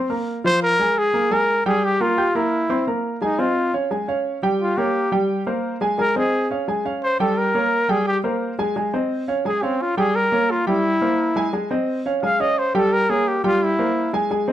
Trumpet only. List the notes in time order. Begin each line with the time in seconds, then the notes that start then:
0.46 C5
0.63 A#4
0.98 G#4
1.33 A#4
1.67 G#4
1.84 G4
2.01 F4
2.36 E4
3.23 D#4
3.39 F4
4.62 F4
4.77 G4
6.00 A#4
6.17 G#4
7.03 C5
7.20 A4
7.38 A#4
7.91 G#4
8.08 G4
9.47 G#4
9.63 C4
9.82 F4
9.98 G#4
10.15 A#4
10.51 F4
10.67 E4
12.23 F5
12.41 D#5
12.59 C5
12.75 A4
12.93 A#4
13.10 G#4
13.28 G4
13.45 F4
13.63 E4